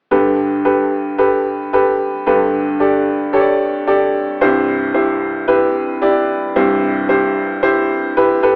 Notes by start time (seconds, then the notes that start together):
0.11 G2 D3 G4 A4 B4
0.65 G4 A4 B4
1.18 G4 A4 B4
1.73 G4 A4 B4
2.26 G2 D3 G4 A4 B4
2.80 G4 A4 D5
3.33 G4 A4 C#5
3.40 D5
3.87 G4 A4 D5
4.41 C2 G2 E4 G4 C5
4.94 E4 G4 C5
5.48 E4 G4 B4
6.01 E4 G4 D5
6.56 C2 G2 E4 G4 C5
7.09 E4 G4 C5
7.63 E4 G4 C5
8.17 E4 G4 B4
8.43 G4 A4 B4